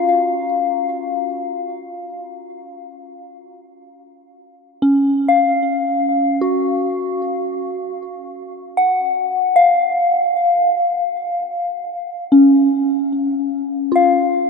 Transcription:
0.00 1.81 F4 medium
0.00 6.41 F#4 medium
0.00 2.20 F5 medium
4.82 6.57 C#4 medium
5.28 8.20 F5 medium
6.41 9.34 F#4 soft
8.77 9.73 F#5 medium
9.56 12.49 F5 medium
12.32 14.09 C#4 soft
13.92 14.50 F4 soft
13.92 14.50 F5 soft

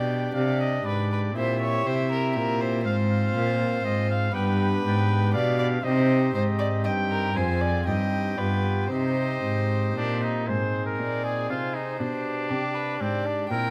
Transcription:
0.00 0.31 B2 medium
0.00 0.34 B2 medium
0.00 1.30 D4 soft
0.00 1.31 G4 soft
0.00 0.34 D5 medium
0.00 0.36 G5 medium
0.34 0.84 C3 medium
0.34 0.82 C3 medium
0.34 0.84 D5 medium
0.34 0.61 F5 medium
0.60 0.87 D#5 medium
0.85 1.34 G#2 medium
0.85 1.32 G#2 medium
0.85 1.11 B4 medium
0.85 1.37 D5 medium
1.12 1.20 B4 medium
1.31 1.85 A#2 medium
1.31 2.79 C4 soft
1.31 2.80 E4 soft
1.31 2.81 G4 soft
1.36 1.82 A#2 soft
1.36 1.61 C5 medium
1.36 2.84 E5 medium
1.62 1.88 C#5 medium
1.86 2.32 C3 medium
1.86 2.38 C3 medium
1.86 2.11 C5 medium
2.12 2.35 A#4 medium
2.36 2.81 A#2 medium
2.36 2.87 A#2 medium
2.36 2.62 A#4 medium
2.61 2.85 C5 medium
2.81 4.28 C4 medium
2.81 4.29 F4 medium
2.85 3.35 G#2 medium
2.85 3.31 G#2 medium
2.85 4.32 C5 medium
2.85 2.96 F5 medium
3.10 3.86 F5 medium
3.36 3.84 A#2 medium
3.36 3.81 A#2 medium
3.84 4.33 G#2 medium
3.84 4.31 G#2 medium
3.84 4.10 D#5 medium
4.10 4.36 F5 medium
4.30 5.78 B3 medium
4.30 5.79 D4 medium
4.30 5.80 G4 medium
4.34 4.84 G2 medium
4.34 4.81 G2 medium
4.34 5.33 B4 medium
4.34 4.67 G5 medium
4.84 5.36 G#2 medium
4.84 5.31 G#2 medium
4.84 5.35 G5 medium
5.33 5.81 B2 medium
5.33 5.84 B2 medium
5.33 5.58 D5 medium
5.33 5.85 F5 medium
5.58 5.66 D5 medium
5.81 6.34 C3 medium
5.81 7.30 C4 soft
5.81 7.31 D#4 medium
5.81 7.31 G4 medium
5.81 6.33 C5 medium
5.81 6.33 D#5 medium
5.85 6.31 C3 medium
6.34 6.87 G#2 medium
6.34 6.82 G#2 medium
6.34 6.42 C5 medium
6.34 6.84 D#5 medium
6.59 6.67 D5 medium
6.84 7.38 G2 medium
6.84 7.32 G2 medium
6.84 6.92 D#5 medium
6.84 7.37 G5 medium
7.11 7.38 A#4 medium
7.32 7.88 F2 medium
7.32 7.81 C4 medium
7.32 7.84 F4 medium
7.32 7.85 G#4 medium
7.32 7.62 C5 medium
7.32 7.87 G#5 medium
7.36 7.83 F2 medium
7.61 7.86 D5 medium
7.83 8.38 G2 medium
7.83 8.35 C4 medium
7.83 8.36 D#4 medium
7.83 8.36 G4 medium
7.83 8.39 D#5 medium
7.83 8.90 G5 medium
7.88 8.35 G2 medium
8.35 8.89 G2 medium
8.35 8.87 B3 soft
8.35 8.88 F4 medium
8.35 8.88 G4 soft
8.35 8.89 B4 medium
8.39 8.87 G2 medium
8.87 9.42 C3 medium
8.87 10.42 C4 medium
8.87 10.43 D#4 soft
8.87 10.44 G4 soft
8.87 10.25 C5 medium
8.87 9.93 D#5 medium
8.92 9.40 C3 medium
9.44 9.95 G#2 medium
9.44 9.92 G#2 medium
9.95 10.47 A#2 medium
9.95 10.45 A#2 medium
9.95 10.24 D4 medium
10.22 10.49 D#4 medium
10.44 11.95 C4 soft
10.44 11.96 D#4 soft
10.44 11.96 G#4 soft
10.44 10.85 C5 medium
10.49 10.96 G#2 medium
10.49 10.96 G#2 soft
10.86 11.26 A#4 medium
10.99 11.47 A#2 medium
10.99 11.46 A#2 soft
10.99 11.52 D5 medium
11.24 11.49 G#4 medium
11.50 11.97 C3 medium
11.50 11.97 C3 soft
11.50 11.76 F4 medium
11.50 12.52 C5 soft
11.74 11.99 D#4 medium
11.98 12.48 B2 medium
11.98 12.47 B2 soft
11.98 13.46 D4 soft
11.98 13.03 D4 medium
11.98 13.47 G4 soft
12.51 12.97 C3 medium
12.51 12.97 C3 soft
12.51 12.76 G4 soft
12.74 13.00 B4 medium
13.00 13.47 G#2 soft
13.00 13.47 G#2 medium
13.00 13.27 C4 medium
13.00 13.49 D5 medium
13.26 13.50 D4 medium
13.48 13.70 A#2 medium
13.48 13.70 A#2 soft
13.48 13.70 C4 soft
13.48 13.70 E4 soft
13.48 13.70 A#4 medium
13.48 13.70 G5 medium

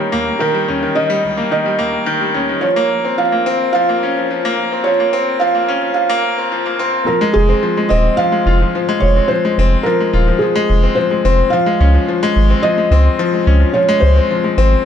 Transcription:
0.00 0.40 D#3 loud
0.00 0.54 G3 loud
0.00 0.12 A#3 medium
0.00 0.68 C#4 medium
0.00 0.44 C#5 medium
0.12 0.31 D#2 medium
0.12 0.26 A#3 medium
0.39 0.54 D#3 medium
0.39 0.98 A#4 medium
0.54 0.68 G3 medium
0.68 0.87 D#2 medium
0.68 0.77 C#4 medium
0.83 0.94 D#3 medium
0.95 1.09 D#3 medium
0.95 1.50 D#5 medium
1.10 1.18 G3 loud
1.25 1.42 C#2 medium
1.37 1.51 A#3 medium
1.51 1.60 D#3 medium
1.51 2.67 D#5 medium
1.66 1.74 G3 medium
1.79 1.98 D#2 medium
1.79 1.93 A#3 medium
2.06 2.20 D#3 loud
2.21 2.35 G3 medium
2.34 2.54 D#2 medium
2.34 2.43 C#4 medium
2.49 2.63 D#3 medium
2.61 2.76 F3 medium
2.61 3.20 C#5 loud
2.76 2.85 A#3 medium
2.91 3.09 A#1 medium
3.05 3.18 C4 medium
3.18 3.27 F3 medium
3.18 3.71 F5 loud
3.32 3.41 A#3 medium
3.46 3.64 G#1 medium
3.46 3.60 C4 loud
3.73 3.88 F3 loud
3.73 4.88 F5 loud
3.89 4.02 A#3 medium
4.01 4.20 A#1 medium
4.01 4.11 C#4 medium
4.17 4.29 F3 medium
4.31 4.44 F3 medium
4.45 4.52 A#3 loud
4.57 4.75 A#1 medium
4.72 4.85 C4 medium
4.84 4.94 F3 medium
4.84 5.42 C#5 loud
5.00 5.08 A#3 medium
5.13 5.31 A#1 medium
5.13 5.26 C4 loud
5.39 5.54 F3 loud
5.39 5.92 F5 loud
5.55 5.68 A#3 medium
5.68 5.86 G#1 medium
5.68 5.77 C#4 medium
5.82 5.94 F3 medium
5.94 6.10 F3 medium
5.94 7.03 F5 medium
6.09 6.18 A#3 loud
6.24 6.42 A#1 loud
6.38 6.51 C4 medium
6.52 6.60 F3 medium
6.66 6.74 A#3 medium
6.79 6.98 A#2 medium
6.79 6.93 C4 loud
7.06 7.21 F3 medium
7.06 7.36 A#4 loud
7.21 7.29 G#3 loud
7.33 7.53 F1 medium
7.33 7.92 G#4 loud
7.49 7.62 C4 medium
7.63 7.71 F3 medium
7.77 7.85 G#3 medium
7.89 8.09 D#1 medium
7.89 8.04 C4 loud
7.89 8.19 D#5 loud
8.17 8.32 F3 medium
8.17 9.04 F5 loud
8.32 8.46 G#3 medium
8.46 8.64 F1 medium
8.46 8.55 F4 medium
8.61 8.74 F3 medium
8.75 8.88 F3 medium
8.89 8.97 G#3 medium
9.00 9.20 F1 medium
9.00 9.30 C#5 medium
9.16 9.29 C4 medium
9.28 9.38 F3 medium
9.28 9.86 C5 loud
9.45 9.52 G#3 medium
9.58 9.76 F1 medium
9.58 9.72 C4 loud
9.83 9.99 F3 loud
9.83 10.42 A#4 loud
10.00 10.13 G#3 medium
10.13 10.31 D#1 medium
10.13 10.21 F4 medium
10.28 10.40 F3 medium
10.39 10.55 F3 medium
10.39 10.97 G#4 medium
10.56 10.63 G#3 loud
10.70 10.87 F1 loud
10.84 10.96 C4 medium
10.95 11.05 F3 medium
10.95 11.53 C5 medium
11.11 11.19 G#3 medium
11.25 11.42 F1 medium
11.25 11.38 C4 loud
11.50 11.66 F3 loud
11.50 12.31 F5 loud
11.66 11.80 G#3 medium
11.80 11.98 C#2 medium
11.80 11.88 C#4 medium
11.94 12.07 F3 medium
12.08 12.21 F3 medium
12.23 12.30 G#3 loud
12.36 12.54 G#1 medium
12.50 12.63 C4 medium
12.63 12.72 F3 medium
12.63 13.78 D#5 loud
12.78 12.86 G#3 medium
12.91 13.09 C#2 loud
12.91 13.05 C4 loud
13.19 13.32 F3 loud
13.34 13.47 G#3 medium
13.47 13.65 C#2 medium
13.47 13.55 C#4 medium
13.60 13.73 F3 medium
13.74 13.88 F3 medium
13.74 14.03 C#5 loud
13.89 13.96 G#3 loud
14.00 14.20 C#2 medium
14.00 14.85 C5 loud
14.16 14.29 C4 medium
14.31 14.38 F3 medium
14.44 14.52 G#3 medium
14.58 14.75 G#1 medium
14.58 14.71 C4 loud

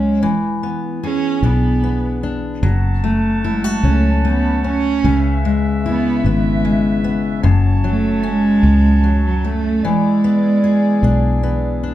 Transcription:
0.00 0.22 C#2 loud
0.00 0.22 F#3 medium
0.00 0.63 G#3 loud
0.00 0.31 C#4 medium
0.00 0.31 F#4 medium
0.22 1.39 E1 loud
0.22 2.62 E3 medium
0.63 1.82 B3 medium
1.03 1.47 C#4 loud
1.03 2.71 G#4 medium
1.43 2.59 B1 medium
1.43 2.34 B3 medium
1.43 2.22 D4 medium
1.84 2.71 B3 medium
2.23 2.71 D4 medium
2.63 3.79 F#1 loud
2.63 5.03 F#3 medium
2.63 5.01 F#3 medium
2.63 5.01 C#4 medium
2.63 5.01 F#5 medium
2.63 5.01 A5 medium
3.04 4.23 A3 medium
3.04 3.46 A3 medium
3.44 3.84 G#3 medium
3.44 3.64 E4 medium
3.64 5.12 F#4 medium
3.83 4.99 C#2 loud
3.83 4.21 A3 medium
3.83 4.64 C#4 medium
4.25 5.12 A3 medium
4.25 4.62 B3 medium
4.64 6.25 C#4 medium
4.64 5.41 C#4 loud
5.04 6.20 C#2 loud
5.04 7.44 C#3 medium
5.04 7.43 C#3 medium
5.04 7.43 C#4 medium
5.04 7.43 B4 medium
5.04 7.43 E5 medium
5.45 6.64 G#3 medium
5.86 6.28 B3 loud
5.86 7.52 E4 medium
6.25 7.40 G#1 medium
6.25 7.15 G#3 medium
6.25 7.03 B3 medium
6.65 7.52 G#3 medium
7.04 7.52 B3 medium
7.42 8.60 F#1 loud
7.42 9.83 F#2 medium
7.42 9.64 F#3 medium
7.42 9.64 F#4 medium
7.42 9.64 C#5 medium
7.42 9.64 A5 medium
7.84 9.02 F#3 medium
7.88 8.29 A3 loud
8.23 9.91 C#4 medium
8.28 9.25 G#3 loud
8.63 9.83 C#2 loud
9.04 9.91 F#3 medium
9.25 9.46 F#3 medium
9.44 9.86 A3 loud
9.44 9.92 A3 medium
9.81 10.99 E1 loud
9.81 11.94 E3 medium
9.81 11.84 G#3 loud
9.81 11.94 E4 medium
9.81 11.94 G#4 medium
9.81 11.94 D5 medium
10.24 11.42 B3 medium
10.64 11.94 G#4 medium
11.03 11.94 B1 loud
11.03 11.82 D4 medium
11.43 11.94 B3 medium
11.83 11.94 D4 medium

